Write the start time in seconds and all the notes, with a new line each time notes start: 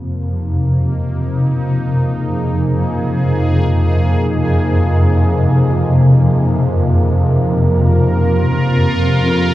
Already playing: F2 C3 F3 A#3 C4 G4
0.22 D#4
2.08 G#4
7.23 A#4
7.84 F4
9.28 C4